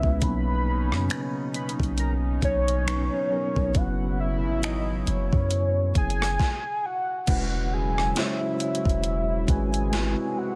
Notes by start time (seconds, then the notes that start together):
Already playing: B2 C#3 G#3 B3 C#4 E4 B4 E5
0.03 C#2, kick
0.22 B1 F#3 A#3 B3 C#4 D#4 B5, kick, closed hi-hat
0.92 F#2, cross-stick
1.10 finger snap, closed hi-hat
1.54 B5, closed hi-hat
1.69 closed hi-hat
1.80 B1, kick, closed hi-hat
1.98 A#5, closed hi-hat
2.42 B1 C#5, kick, closed hi-hat
2.68 closed hi-hat
2.86 F#3 B3 C#4 D#4 B4, finger snap, closed hi-hat
3.30 F#3 B3 C#4 D#4 A#4
3.56 B1, kick
3.74 F#1 C#3 F#3 B3 C#4 E4 B4 F#5, kick, closed hi-hat
4.20 E5
4.45 G#1
4.63 D#5, finger snap, closed hi-hat
5.07 F#1 C#5, closed hi-hat
5.33 F#2, kick
5.51 closed hi-hat
5.95 F#1 G#5, kick, closed hi-hat
6.10 closed hi-hat
6.22 cross-stick, closed hi-hat
6.40 kick, snare
6.86 F#5
7.27 E1 C#3 F#3 G#3 C#4 E4 F#4 B4 F#5, kick, closed hi-hat, crash
7.73 G#5
7.98 cross-stick
8.15 G#3 C#4 E4 F#4 C5 E5, snare, closed hi-hat
8.24 C#5
8.60 E5, closed hi-hat
8.75 closed hi-hat
8.85 E1, kick, closed hi-hat
9.04 closed hi-hat
9.47 G#1 G#3 C#4 E4 F#4 B4 G#5, kick, closed hi-hat
9.74 closed hi-hat
9.91 C3 F#3 G#3 B3 E4 F#4 B4, snare, closed hi-hat
9.98 C4
10.38 F#5